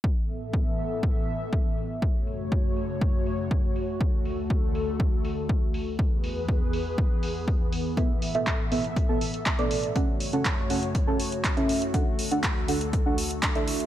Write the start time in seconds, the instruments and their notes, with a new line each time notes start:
0.04 analog synth pad A2 E3 B3 A4 E5, kick
0.29 open hi-hat
0.54 kick
0.78 open hi-hat
1.03 kick
1.28 open hi-hat
1.53 kick
1.77 open hi-hat
2.02 analog synth pad F#2 C#3 A3 F#4 C#5, kick
2.27 open hi-hat
2.52 kick
2.77 open hi-hat
3.01 kick
3.26 open hi-hat
3.51 kick
3.76 open hi-hat
4.01 analog synth pad D2 D3 A3 A4, kick
4.25 open hi-hat
4.50 kick
4.75 open hi-hat
5.00 kick
5.25 open hi-hat
5.49 kick
5.74 open hi-hat
5.99 analog synth pad E2 E3 B3 G#4 B4, kick
6.24 open hi-hat
6.49 kick
6.73 open hi-hat
6.98 kick
7.23 open hi-hat
7.48 kick
7.73 open hi-hat
7.97 analog synth pad A2 A4 E5, synth stab B3 A4 E5, kick, closed hi-hat
8.22 open hi-hat
8.35 synth stab B3 A4 E5, closed hi-hat
8.47 kick, clap, closed hi-hat
8.72 synth stab B3 A4 E5, open hi-hat
8.84 closed hi-hat
8.96 kick, closed hi-hat
9.09 synth stab B3 A4 A5
9.21 open hi-hat
9.34 closed hi-hat
9.46 kick, clap, closed hi-hat
9.59 synth stab B3 A4 D5, closed hi-hat
9.71 open hi-hat
9.83 closed hi-hat
9.95 analog synth pad F#2 C#3 A3 F#4 C#5, synth stab C#4 A4 F#5, kick, closed hi-hat
10.20 open hi-hat
10.33 synth stab C#4 A4 F#5, closed hi-hat
10.45 kick, clap, closed hi-hat
10.70 synth stab C#4 A4 F#5, open hi-hat
10.83 closed hi-hat
10.95 kick, closed hi-hat
11.07 synth stab C#4 A4 A5
11.20 open hi-hat
11.32 closed hi-hat
11.44 kick, clap, closed hi-hat
11.57 synth stab C#4 A4 E5, closed hi-hat
11.69 open hi-hat
11.82 closed hi-hat
11.94 analog synth pad D2 D3 A4, synth stab D4 A4 F#5, kick, closed hi-hat
12.19 open hi-hat
12.31 synth stab D4 A4 F#5, closed hi-hat
12.44 kick, clap, closed hi-hat
12.68 synth stab D4 A4 F#5, open hi-hat
12.81 closed hi-hat
12.93 kick, closed hi-hat
13.06 synth stab D4 A4 F#5
13.18 open hi-hat
13.31 closed hi-hat
13.43 kick, clap, closed hi-hat
13.55 synth stab D4 A4 E5, closed hi-hat
13.68 open hi-hat
13.80 closed hi-hat